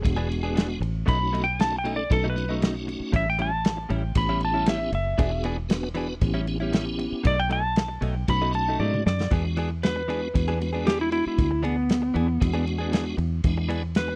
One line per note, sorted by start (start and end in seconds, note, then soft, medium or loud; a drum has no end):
0.00 0.79 D4 medium
0.00 0.52 G#4 loud
0.00 muted clean electric guitar stroke soft
0.04 0.78 E1 medium
0.04 0.79 G#3 medium
0.04 0.79 B3 medium
0.04 0.79 F#4 medium
0.04 kick medium
0.04 ride medium
0.16 0.28 E3 medium
0.16 0.28 B3 medium
0.16 0.29 D4 medium
0.16 0.29 G#4 medium
0.29 muted clean electric guitar stroke soft
0.29 ride medium
0.43 0.54 B3 soft
0.43 0.55 D4 medium
0.43 0.55 G#4 medium
0.55 0.68 E3 medium
0.55 0.69 B3 medium
0.55 0.68 D4 medium
0.55 0.67 G#4 medium
0.55 snare loud
0.55 ride medium
0.69 muted clean electric guitar stroke medium
0.80 1.05 A1 medium
0.80 muted clean electric guitar stroke soft
0.80 ride medium
1.06 2.06 B1 medium
1.06 1.20 B2 medium
1.06 1.20 F#3 medium
1.06 1.19 A3 medium
1.06 1.46 A3 medium
1.06 1.45 C#4 medium
1.06 1.18 D#4 medium
1.06 1.46 D#4 medium
1.06 1.46 F#4 medium
1.06 1.41 B5 medium
1.06 kick loud
1.06 ride medium
1.20 muted clean electric guitar stroke soft
1.32 1.46 B2 medium
1.32 1.46 F#3 medium
1.32 1.46 A3 medium
1.32 1.44 D#4 medium
1.32 ride medium
1.44 1.59 G5 medium
1.44 muted clean electric guitar stroke soft
1.59 1.78 A3 medium
1.59 1.78 C#4 medium
1.59 1.78 D#4 medium
1.59 1.78 F#4 medium
1.59 1.76 A5 loud
1.59 snare loud
1.59 ride medium
1.72 muted clean electric guitar stroke soft
1.78 1.94 G5 medium
1.84 1.98 B2 medium
1.84 1.98 F#3 medium
1.84 2.04 A3 medium
1.84 1.97 A3 medium
1.84 2.04 C#4 medium
1.84 2.04 D#4 medium
1.84 1.97 D#4 medium
1.84 2.04 A4 medium
1.84 ride medium
1.96 2.11 D5 medium
1.96 muted clean electric guitar stroke soft
2.10 2.97 B1 loud
2.10 2.29 A3 medium
2.10 2.29 C#4 medium
2.10 2.29 D#4 medium
2.10 2.29 F#4 medium
2.10 2.28 A4 medium
2.10 muted clean electric guitar stroke soft
2.10 kick medium
2.10 ride medium
2.24 2.36 B2 medium
2.24 2.36 F#3 medium
2.24 2.36 A3 medium
2.24 2.36 D#4 medium
2.30 2.53 B4 loud
2.35 2.45 A3 medium
2.35 2.46 C#4 medium
2.35 2.46 D#4 medium
2.35 2.46 F#4 medium
2.35 muted clean electric guitar stroke soft
2.35 ride medium
2.48 2.61 F#3 soft
2.48 3.12 A3 medium
2.48 2.62 A3 medium
2.48 3.12 C#4 medium
2.48 3.13 D#4 medium
2.48 2.61 D#4 soft
2.48 3.13 F#4 medium
2.61 2.75 B2 medium
2.61 2.75 F#3 medium
2.61 2.75 A3 medium
2.61 2.74 D#4 medium
2.61 snare loud
2.61 ride medium
2.75 muted clean electric guitar stroke medium
2.87 muted clean electric guitar stroke soft
2.87 ride medium
3.00 muted fingered electric bass stroke soft
3.12 3.86 A1 loud
3.12 3.26 A2 medium
3.12 3.26 G3 medium
3.12 3.26 C#4 medium
3.12 3.25 E4 medium
3.12 3.28 E5 loud
3.12 kick loud
3.12 ride medium
3.26 3.40 G5 medium
3.26 muted clean electric guitar stroke soft
3.39 3.52 A2 medium
3.39 3.52 G3 medium
3.39 3.51 C#4 medium
3.39 3.51 E4 medium
3.39 3.98 A5 loud
3.39 ride medium
3.52 muted clean electric guitar stroke soft
3.65 snare loud
3.65 ride medium
3.77 muted clean electric guitar stroke soft
3.89 4.14 A1 medium
3.89 4.03 A2 medium
3.89 4.03 G3 medium
3.89 4.03 C#4 medium
3.89 4.03 E4 medium
3.89 ride medium
3.98 4.15 G5 loud
4.04 muted clean electric guitar stroke medium
4.15 4.89 A1 loud
4.15 4.91 B3 medium
4.15 4.91 C#4 medium
4.15 4.91 E4 medium
4.15 4.91 G4 medium
4.15 4.42 B5 medium
4.15 muted clean electric guitar stroke soft
4.15 kick medium
4.15 ride loud
4.29 4.40 A2 medium
4.29 4.40 G3 medium
4.29 4.41 C#4 medium
4.29 4.41 E4 medium
4.41 muted clean electric guitar stroke soft
4.41 ride medium
4.45 4.68 A5 loud
4.54 4.65 G3 soft
4.54 4.66 C#4 soft
4.54 4.67 E4 medium
4.66 4.80 A2 medium
4.66 4.80 G3 medium
4.66 4.79 C#4 medium
4.66 4.78 E4 medium
4.66 4.93 E5 loud
4.66 snare loud
4.66 ride loud
4.80 muted clean electric guitar stroke soft
4.92 5.17 F#1 medium
4.92 5.44 E5 loud
4.92 muted clean electric guitar stroke soft
4.92 ride medium
5.18 6.18 E1 loud
5.18 5.32 E3 medium
5.18 5.56 B3 medium
5.18 5.32 B3 medium
5.18 5.56 D4 medium
5.18 5.31 D4 medium
5.18 5.57 F#4 medium
5.18 5.57 G#4 medium
5.18 5.31 G#4 medium
5.18 kick loud
5.18 ride medium
5.32 muted clean electric guitar stroke soft
5.44 5.58 E3 medium
5.44 5.58 B3 medium
5.44 5.57 D4 medium
5.44 5.57 G#4 medium
5.44 ride medium
5.58 muted clean electric guitar stroke medium
5.69 5.89 B3 medium
5.69 5.89 D4 medium
5.69 5.89 F#4 medium
5.69 5.89 B4 loud
5.69 snare loud
5.69 ride medium
5.83 muted clean electric guitar stroke soft
5.94 6.09 E3 medium
5.94 6.14 B3 medium
5.94 6.08 B3 medium
5.94 6.15 D4 medium
5.94 6.08 D4 medium
5.94 6.15 F#4 medium
5.94 6.07 G#4 medium
5.94 6.15 B4 medium
5.94 ride medium
6.09 muted clean electric guitar stroke soft
6.21 7.08 A1 loud
6.21 6.41 B3 medium
6.21 6.41 C#4 medium
6.21 6.41 E4 medium
6.21 6.41 G4 loud
6.21 muted clean electric guitar stroke soft
6.21 kick medium
6.21 ride medium
6.34 6.46 A2 medium
6.34 6.46 G3 medium
6.34 6.46 C#4 medium
6.34 6.46 E4 medium
6.47 6.57 B3 loud
6.47 6.58 C#4 medium
6.47 6.58 E4 medium
6.47 6.58 G4 loud
6.47 muted clean electric guitar stroke soft
6.47 ride medium
6.60 6.71 G3 medium
6.60 7.26 B3 medium
6.60 6.72 C#4 medium
6.60 7.25 C#4 medium
6.60 6.73 E4 medium
6.60 7.25 E4 medium
6.60 7.26 G4 loud
6.72 6.86 A2 medium
6.72 6.86 G3 medium
6.72 6.85 C#4 medium
6.72 6.85 E4 medium
6.72 snare loud
6.72 ride medium
6.86 muted clean electric guitar stroke medium
6.98 muted clean electric guitar stroke soft
6.98 ride medium
7.12 muted fingered electric bass stroke soft
7.24 7.98 B1 loud
7.24 7.38 B2 medium
7.24 7.37 F#3 medium
7.24 7.37 A3 medium
7.24 7.36 D#4 medium
7.24 7.39 D5 loud
7.24 kick loud
7.24 ride medium
7.37 7.51 G5 medium
7.37 muted clean electric guitar stroke medium
7.49 7.63 B2 medium
7.49 7.63 F#3 medium
7.49 7.62 A3 medium
7.49 7.62 D#4 medium
7.49 8.09 A5 loud
7.49 ride medium
7.63 muted clean electric guitar stroke soft
7.76 snare loud
7.76 ride medium
7.88 muted clean electric guitar stroke soft
8.01 8.26 B1 medium
8.01 8.15 B2 medium
8.01 8.15 F#3 medium
8.01 8.15 A3 medium
8.01 8.15 D#4 medium
8.01 ride medium
8.09 8.27 G5 loud
8.28 8.76 B1 loud
8.28 9.03 A3 medium
8.28 9.03 C#4 medium
8.28 9.03 D#4 medium
8.28 9.03 F#4 medium
8.28 8.54 B5 loud
8.28 muted clean electric guitar stroke soft
8.28 kick medium
8.28 ride loud
8.42 8.53 B2 medium
8.42 8.53 F#3 medium
8.42 8.53 A3 medium
8.42 8.54 D#4 medium
8.54 8.79 A5 medium
8.54 muted clean electric guitar stroke soft
8.54 ride medium
8.68 8.80 F#3 soft
8.68 8.80 A3 medium
8.68 8.80 D#4 soft
8.79 9.03 G#2 medium
8.79 8.93 B2 medium
8.79 8.94 F#3 medium
8.79 8.93 A3 medium
8.79 8.93 D#4 medium
8.79 9.05 D5 medium
8.79 high tom medium
8.94 mid tom medium
9.06 9.29 F#2 medium
9.06 9.31 D5 loud
9.06 muted clean electric guitar stroke soft
9.06 snare loud
9.21 snare medium
9.31 10.30 E2 medium
9.31 9.44 E3 medium
9.31 9.70 G#3 medium
9.31 9.45 B3 medium
9.31 9.70 B3 medium
9.31 9.70 D4 medium
9.31 9.45 D4 medium
9.31 9.70 F#4 medium
9.31 9.43 G#4 medium
9.31 kick loud
9.31 ride medium
9.45 muted clean electric guitar stroke medium
9.57 9.70 E3 medium
9.57 9.70 B3 medium
9.57 9.70 D4 medium
9.57 9.69 G#4 medium
9.57 ride medium
9.71 muted clean electric guitar stroke soft
9.83 10.02 G#3 medium
9.83 10.02 B3 medium
9.83 10.02 D4 medium
9.83 10.03 F#4 medium
9.83 10.83 B4 loud
9.83 snare loud
9.83 ride medium
9.96 muted clean electric guitar stroke soft
10.08 10.22 E3 medium
10.08 10.28 G#3 medium
10.08 10.21 B3 medium
10.08 10.28 B3 medium
10.08 10.21 D4 medium
10.08 10.28 D4 medium
10.08 10.28 F#4 medium
10.08 10.20 G#4 medium
10.08 ride medium
10.22 muted clean electric guitar stroke soft
10.34 11.22 E2 medium
10.34 10.53 G#3 medium
10.34 10.53 B3 medium
10.34 10.54 D4 medium
10.34 10.54 F#4 medium
10.34 muted clean electric guitar stroke soft
10.34 kick medium
10.34 ride medium
10.48 10.58 E3 medium
10.48 10.59 B3 medium
10.48 10.59 D4 medium
10.48 10.59 G#4 medium
10.60 10.70 G#3 medium
10.60 10.71 B3 medium
10.60 10.71 D4 medium
10.60 10.71 F#4 loud
10.60 muted clean electric guitar stroke soft
10.60 ride medium
10.73 11.49 G#3 medium
10.73 10.85 B3 soft
10.73 11.49 B3 medium
10.73 10.86 D4 soft
10.73 11.50 D4 medium
10.73 11.49 F#4 medium
10.73 10.85 G#4 medium
10.86 10.99 E3 medium
10.86 11.00 B3 medium
10.86 10.99 D4 medium
10.86 10.99 G4 medium
10.86 10.99 G#4 medium
10.86 snare loud
10.86 ride medium
11.00 11.11 E4 medium
11.00 muted clean electric guitar stroke soft
11.12 11.25 E4 medium
11.12 muted clean electric guitar stroke soft
11.12 ride medium
11.26 11.63 E4 medium
11.26 muted fingered electric bass stroke soft
11.38 12.11 D2 medium
11.38 kick loud
11.38 ride medium
11.51 muted clean electric guitar stroke soft
11.63 11.76 E3 medium
11.63 11.77 B3 medium
11.63 12.64 B3 medium
11.63 11.77 D4 medium
11.63 11.76 G#4 medium
11.63 ride medium
11.77 muted clean electric guitar stroke soft
11.89 snare loud
11.89 ride medium
12.02 muted clean electric guitar stroke soft
12.14 12.39 E2 medium
12.14 12.28 E3 medium
12.14 12.28 B3 medium
12.14 12.28 D4 medium
12.14 12.27 G#4 medium
12.14 ride medium
12.28 muted clean electric guitar stroke medium
12.40 13.14 E2 medium
12.40 13.16 G#3 medium
12.40 13.16 B3 medium
12.40 13.16 D4 medium
12.40 13.17 F#4 loud
12.40 muted clean electric guitar stroke soft
12.40 kick medium
12.40 ride medium
12.54 12.64 E3 medium
12.54 12.65 B3 medium
12.54 12.65 D4 medium
12.54 12.66 G#4 medium
12.66 muted clean electric guitar stroke soft
12.66 ride medium
12.78 12.91 B3 soft
12.78 12.92 D4 soft
12.78 12.92 G#4 medium
12.91 13.05 E3 medium
12.91 13.05 B3 medium
12.91 13.05 D4 medium
12.91 13.04 G#4 medium
12.91 snare loud
12.91 ride medium
13.17 13.42 E2 medium
13.17 muted clean electric guitar stroke soft
13.17 ride medium
13.44 14.16 E2 medium
13.44 13.82 G#3 medium
13.44 13.82 B3 medium
13.44 13.82 D4 medium
13.44 13.83 E4 medium
13.44 kick loud
13.44 ride medium
13.58 muted clean electric guitar stroke medium
13.69 13.83 E3 medium
13.69 13.83 B3 medium
13.69 13.83 D4 medium
13.69 13.82 G#4 medium
13.69 ride medium
13.83 muted clean electric guitar stroke soft
13.95 14.15 G#3 medium
13.95 14.15 B3 medium
13.95 14.15 D4 medium
13.95 14.15 F#4 medium
13.95 14.16 B4 loud
13.95 snare loud
13.95 ride medium
14.08 muted clean electric guitar stroke soft